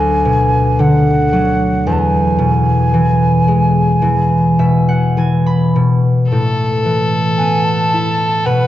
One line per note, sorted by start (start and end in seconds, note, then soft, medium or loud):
0.00 1.89 D2 medium
0.00 0.82 G#5 medium
0.25 0.83 B2 soft
0.79 1.89 D3 soft
0.79 1.88 F#5 medium
1.33 1.89 F#3 soft
1.87 5.77 E2 medium
1.87 1.94 G#5 medium
1.92 2.00 A5 medium
1.99 5.17 G#5 medium
2.39 4.58 B2 soft
2.94 4.01 E3 soft
3.48 6.34 G#3 soft
4.02 4.64 E3 soft
4.59 5.74 B2 soft
4.59 6.32 E5 soft
4.89 6.49 F#5 medium
5.17 5.79 E3 soft
5.17 6.38 G#5 medium
5.46 6.82 B5 medium
5.76 6.34 B2 soft
6.30 8.50 A2 soft
6.30 8.48 A4 medium
6.85 8.50 E3 soft
7.38 8.67 B3 soft
7.38 7.66 G#5 medium
7.65 8.47 A5 medium
7.93 8.67 E4 soft
8.45 8.67 B2 medium
8.45 8.67 B4 medium
8.45 8.67 F#5 medium